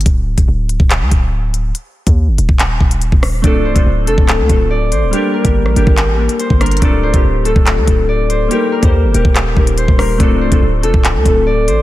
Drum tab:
HH |x-----x-----x---x---x-------x---|x-----x-----x---x-----x-x---o---|x-----x-----x---x---x-------x---|x-----x-----x---x-----x-x---xxxx|
CP |----------------x---------------|----------------x---------------|----------------x---------------|----------------x---------------|
SD |--------------------------------|----------------------------r---|--------------------------------|----------r-----------------r---|
BD |o-----o-------o-----o-----------|------o-------o-----o-----o-----|o-----o-------o-----o-----------|------o-------o-----------o-----|

HH |x-----x-----x---x---x-------x---|x-----x-----x---x-----x-x---o---|x-----x-----x---x---x-------x---|
CP |----------------x---------------|----------------x---------------|----------------x---------------|
SD |--------------------------------|----------------------------r---|--------------------------------|
BD |o-----o-------o-----o-----------|------o-------o-----o-----o-----|o-----o-------o-----o-----------|